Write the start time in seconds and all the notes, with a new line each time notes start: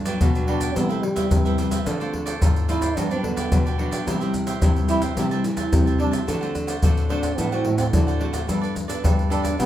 Already playing: G2
0.05 F#3 B3 D4 G4 B4 D5, pandeiro, maracas
0.21 B2 D3 F#4 G4 B4 D5, pandeiro, maracas, surdo
0.35 F#3 B3 D4, pandeiro, maracas
0.47 D4 F#4 G4 B4 D5, pandeiro
0.60 G4 B4 D5, pandeiro, maracas, surdo
0.75 C3 G3 B3 E4 G4 B4 C5 E5, pandeiro, maracas, surdo
0.89 A3 B4 C5 E5, pandeiro, maracas
1.03 G3, muted cavaquinho stroke, pandeiro
1.16 G3 B3 E4 B4 C5 E5, pandeiro, maracas, surdo
1.31 G2 C3, pandeiro, maracas, surdo
1.45 G3 B3 E4 B4 C5 E5, pandeiro, maracas
1.58 G4 B4 C5 E5, pandeiro, maracas
1.71 A3 C4 F4 B4 C5 E5, pandeiro, maracas, surdo
1.86 D3 F4 A4 C5 D5, pandeiro, maracas, surdo
2.00 A3 C4 F4 A4 C5 D5, pandeiro, maracas
2.13 muted cavaquinho stroke, pandeiro, surdo
2.26 A4 C5 D5, pandeiro, maracas
2.41 G#2 A3 C4 F4 A4 C5 D5, pandeiro, maracas, surdo
2.56 pandeiro, maracas
2.68 A3 C4 E4 F4 A4 C5 D5, pandeiro, maracas
2.81 A4 C5 D5, pandeiro, maracas, surdo
2.96 G2 F#3 B3 D4 F#4 G4 B4 D5, pandeiro, maracas, surdo
3.11 F#3 B3 C4 D4 G4 B4 D5, pandeiro, maracas
3.23 D3 B3, muted cavaquinho stroke, pandeiro, surdo
3.36 G4 B4 D5, pandeiro, maracas, surdo
3.52 B2 D3 F#3 B3 D4, pandeiro, maracas, surdo
3.66 G4 B4 D5, pandeiro, maracas
3.78 F#3 B3 D4 F#4 G4 B4 D5, pandeiro
3.91 G4 B4 D5, pandeiro, maracas, surdo
4.06 C3 G3 C4 E4 G4 C5 E5, pandeiro, maracas, surdo
4.20 G3 C4 E4 G4 C5 E5, pandeiro, maracas
4.33 muted cavaquinho stroke, pandeiro, maracas, surdo
4.47 G4 C5 E5, pandeiro, maracas
4.62 G2 C3 G3 C4 E4 G4 C5 E5, pandeiro, maracas, surdo
4.76 pandeiro, maracas
4.88 G3 C4 E4 G4 C5 E5, pandeiro, maracas
5.02 G4 C5 E5, pandeiro, maracas, surdo
5.17 C3 G3 A3 E4 G4 C5 E5 A5, pandeiro, maracas, surdo
5.31 G3 A3 E4 C5 E5 A5, pandeiro, maracas
5.44 E3, muted cavaquinho stroke, pandeiro, maracas
5.57 C5 E5 A5, pandeiro, maracas, surdo
5.72 C3 G3 A3 E4, pandeiro, maracas, surdo
5.86 C5 E5 A5, pandeiro, maracas
5.98 G3 A3 D4 E4 G4 C5 E5 A5, pandeiro
6.11 C5 E5 A5, pandeiro, maracas, surdo
6.27 D3 A3 C4 D4 F#4 C5 D5 F#5, pandeiro, maracas, surdo
6.41 A3 C4 F#4 C5 D5 F#5, pandeiro, maracas
6.54 muted cavaquinho stroke, pandeiro, maracas, surdo
6.67 C5 D5 F#5, pandeiro, maracas
6.82 A2 D3 A3 C4 D4 F#4 C5 D5 F#5, pandeiro, maracas, surdo
6.97 pandeiro, maracas
7.09 A3 C4 D4 F#4 C5 D5 F#5, pandeiro
7.23 C5 D5 F#5, pandeiro, maracas, surdo
7.38 A2 D3 B3 D4 C5 D5 F#5, pandeiro, maracas, surdo
7.51 A3 C4 F#4 C5 D5 F#5, pandeiro, maracas
7.65 A2, muted cavaquinho stroke, pandeiro
7.77 C4 C5 D5 F#5, pandeiro, maracas, surdo
7.92 A2 D3 A3 C4 D4 F#4, pandeiro, maracas, surdo
8.07 C5 D5 F#5, pandeiro, maracas
8.19 A3 C4 D4 F#4 C5 D5 F#5, pandeiro
8.33 C5 D5 F#5, pandeiro, maracas, surdo
8.47 G2 G3 B3 D4 G4 A4 B4 D5, pandeiro, maracas, surdo
8.61 A4 B4 D5, pandeiro, maracas
8.75 muted cavaquinho stroke, pandeiro, maracas, surdo
8.88 B3 D4 A4 B4 D5, pandeiro, maracas
9.03 G2 D3 G4 A4 B4 D5, pandeiro, maracas, surdo
9.19 pandeiro, maracas
9.30 B3 D4 G4 A4 B4 D5, pandeiro, maracas
9.43 A4 B4 D5, pandeiro, maracas, surdo
9.58 C3 G3 B3 D4 E4 G4 C5 E5, pandeiro, maracas, surdo